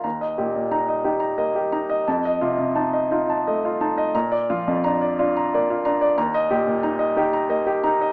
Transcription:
\new Staff \with { instrumentName = "Grand piano" } { \time 6/8 \key ees \lydian \tempo 4. = 59 << { bes''16 ees''16 g'16 bes,16 bes''16 ees''16 g'16 bes''16 ees''16 g'16 bes''16 ees''16 | a''16 ees''16 f'16 c16 a''16 ees''16 f'16 a''16 ees''16 f'16 a''16 ees''16 | bes''16 d''16 f'16 f,16 bes''16 d''16 f'16 bes''16 d''16 f'16 bes''16 d''16 | bes''16 ees''16 g'16 bes,16 bes''16 ees''16 g'16 bes''16 ees''16 g'16 bes''16 ees''16 | } \\ { ees,8 bes,8 ees'8 ees'8 bes8 ees'8 | f,8 c8 ees'8 ees'8 a8 ees'8 | bes,8 f8 d'8 d'8 bes8 d'8 | ees,8 bes,8 ees'8 ees'8 bes8 ees'8 | } >> }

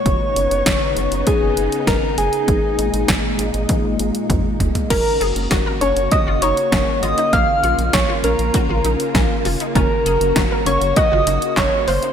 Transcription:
<<
  \new Staff \with { instrumentName = "Soft synth lead" } { \time 4/4 \key aes \dorian \tempo 4 = 99 des''2 aes'4 bes'8 aes'8~ | aes'2. r4 | \key ges \lydian bes'4 r8 des''8 ees''8 des''4 ees''8 | f''4 des''8 bes'2 r8 |
bes'4. des''8 ees''4 des''8 c''8 | }
  \new Staff \with { instrumentName = "Synth arpeggio sound" } { \time 4/4 \key aes \dorian r1 | r1 | \key ges \lydian des'8 aes'8 ges'16 bes'16 des'8 ges'16 f'16 ees'8 des'8 f'16 ees'16 | bes8 f'8 des'16 f'16 des'8 ges'16 f'16 ees'8 des'8 f'16 ees'16 |
des'8 aes'8 ges'16 bes'16 des'8 ges'16 f'16 ees'8 des'8 f'16 ees'16 | }
  \new Staff \with { instrumentName = "String machine" } { \time 4/4 \key aes \dorian << { ees'1~ | ees'1 | \key ges \lydian ges'1 | f'1 |
ges'1 | } \\ { <des ces'>1 | <bes, aes>1 | <des bes>1~ | <des bes>1~ |
<des bes>1 | } >> }
  \new Staff \with { instrumentName = "Analog synth bass" } { \clef bass \time 4/4 \key aes \dorian ges,,16 r16 ges,,16 ges,,16 ges,,16 r16 ges,,16 ges,,16 r16 ges,,16 ges,,16 r16 ges,,16 r16 ges,,16 r16 | aes,,16 r16 aes,,16 aes,,16 aes,,16 r16 aes,,16 aes,,16 r16 aes,,16 aes,,16 r16 aes,,16 r16 f,,16 r16 | \key ges \lydian ges,,16 r16 ges,,16 ges,,16 ges,,16 r16 ges,,16 ges,,16 r16 ges,,16 ges,,16 r16 ges,,16 r16 aes,,16 r16 | bes,,16 r16 bes,,16 bes,,16 bes,,16 r16 bes,,16 bes,,16 r16 bes,,16 bes,,16 r16 bes,,16 r16 f,,16 r16 |
ges,,16 r16 ges,,16 ges,,16 ges,,16 r16 ges,,16 ges,,16 r16 ges,,16 ges,,16 r16 ges,,16 r16 ges,,16 r16 | }
  \new DrumStaff \with { instrumentName = "Drums" } \drummode { \time 4/4 <hh bd>8 hh16 hh16 <hh bd sn>8 hh16 hh16 <hh bd>8 hh16 hh16 <hh bd sn>8 hh16 hh16 | <hh bd>8 hh16 hh16 <hh bd sn>8 hh16 hh16 <hh bd tommh>8 hh16 hh16 <hh bd toml>8 <hh tomfh>16 <hh tomfh>16 | <cymc hh bd>8 hh16 hh16 <hh bd sn>8 hh16 hh16 <hh bd>8 hh16 hh16 <hh bd sn>8 hh16 hh16 | <hh bd>8 hh16 hh16 <hh bd sn>8 hh16 hh16 <hh bd>8 hh16 hh16 <hh bd sn>8 hho16 hh16 |
<hh bd>8 hh16 hh16 <hh bd sn>8 hh16 hh16 <hh bd>8 hh16 hh16 <hc hh bd sn>8 hho16 hh16 | }
>>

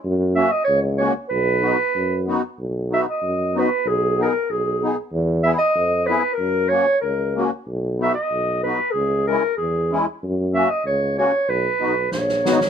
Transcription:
<<
  \new Staff \with { instrumentName = "Clarinet" } { \time 2/4 \key b \major \tempo 4 = 94 r8 e''16 dis''16 cis''8 cis''8 | b'4. r8 | r8 e''16 dis''8. b'8 | gis'8 ais'8 gis'8. r16 |
r8 e''16 dis''8. b'8 | ais'8 cis''8 ais'8. r16 | r8 e''16 dis''8. b'8 | gis'8 ais'8 gis'8. r16 |
r8 e''16 dis''16 cis''8 cis''8 | b'4 cis''4 | }
  \new Staff \with { instrumentName = "Accordion" } { \time 2/4 \key b \major r8 <ais cis' fis'>8 r8 <ais cis' fis'>8 | r8 <b dis' fis'>8 r8 <b dis' fis'>8 | r8 <b dis' fis'>8 r8 <b dis' fis'>8 | r8 <b dis' gis'>8 r8 <b dis' gis'>8 |
r8 <b e' gis'>8 r8 <b e' gis'>8 | r8 <ais cis' fis'>8 r8 <ais cis' fis'>8 | r8 <b dis' fis'>8 r8 <b dis' fis'>8 | r8 <gis cis' e'>8 r8 <gis cis' e'>8 |
r8 <ais cis' fis'>8 r8 <ais cis' fis'>8 | r8 <b dis' fis'>8 r8 <b dis' fis'>8 | }
  \new Staff \with { instrumentName = "Tuba" } { \clef bass \time 2/4 \key b \major fis,4 cis,4 | b,,4 fis,4 | b,,4 fis,4 | b,,4 b,,4 |
e,4 eis,4 | fis,4 cis,4 | b,,4 b,,4 | cis,4 e,4 |
fis,4 cis,4 | b,,8 b,,8 ais,,8 gis,,8 | }
  \new DrumStaff \with { instrumentName = "Drums" } \drummode { \time 2/4 r4 r4 | r4 r4 | r4 r4 | r4 r4 |
r4 r4 | r4 r4 | r4 r4 | r4 r4 |
r4 r4 | r4 sn16 sn16 sn16 sn16 | }
>>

